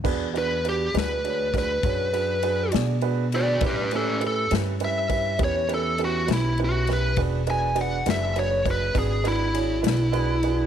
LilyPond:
<<
  \new Staff \with { instrumentName = "Lead electric guitar" } { \time 12/8 \key e \mixolydian \tempo 4. = 67 r8 b'8 g'8 b'4 b'2 r4 <fis' d''>8 | <g' b'>8 <cis' a'>8 a'8 r8 e''4 cis''8 a'8 fis'8 e'8 fis'8 b'8 | r8 gis''8 fis''8 e''8 cis''8 b'8 gis'8 e'2~ e'8 | }
  \new Staff \with { instrumentName = "Grand piano" } { \time 12/8 \key e \mixolydian <d' fis' gis' b'>8 <d' fis' gis' b'>8 <d' fis' gis' b'>8 <d' fis' gis' b'>8 <d' fis' gis' cis''>8 <d' fis' gis' b'>8 <d' fis' gis' cis''>8 <d' fis' gis' b'>8 <d' fis' gis' b'>8 <d' fis' gis' d''>8 <d' fis' gis' b'>8 <d' fis' gis' b'>8 | <cis' e' g' b'>8 <cis' e' g' b'>8 <cis' e' g' b'>8 <cis' e' g' b'>8 <cis' e' g' b'>8 <cis' e' g' b'>8 <cis' e' g' b'>8 <cis' e' g' b'>8 <cis' e' g' b'>8 <cis' e' g' b'>8 <cis' e' g' b'>8 <cis' e' g' b'>8 | <d' fis' gis' b'>8 <d' fis' gis' b'>8 <d' fis' gis' b'>8 <d' fis' gis' b'>8 <d' fis' gis' b'>8 <d' fis' gis' b'>8 <d' fis' gis' b'>8 <d' fis' gis' b'>8 <d' fis' gis' cis''>8 <d' fis' gis' b'>8 <d' fis' gis' b'>8 <d' fis' gis' b'>8 | }
  \new Staff \with { instrumentName = "Upright bass" } { \clef bass \time 12/8 \key e \mixolydian e,4. d,4. fis,4. b,4. | a,4. g,4. e,4. b,,4. | e,,4. fis,,4. gis,,4. b,,4. | }
  \new DrumStaff \with { instrumentName = "Drums" } \drummode { \time 12/8 <cymc bd>8 cymr8 cymr8 <cymr sn>8 cymr8 <bd cymr sn>8 <bd cymr>8 cymr8 cymr8 <cymr sn>8 cymr8 cymr8 | <bd cymr>8 cymr8 cymr8 <cymr sn>8 cymr8 <bd cymr>8 <bd cymr>8 cymr8 cymr8 <cymr sn>8 cymr8 <cymr sn>8 | <bd cymr>8 cymr8 cymr8 <cymr sn>8 cymr8 <bd cymr>8 <bd cymr>8 cymr8 cymr8 <cymr sn>8 cymr8 cymr8 | }
>>